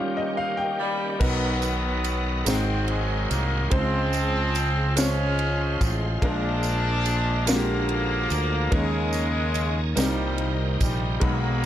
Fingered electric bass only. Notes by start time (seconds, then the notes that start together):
1.20 B1
2.46 G#1
3.31 C2
3.72 C#2
5.81 A1
6.22 A#1
8.31 D2
8.72 D#2
9.97 C2
10.81 A#1
11.22 B1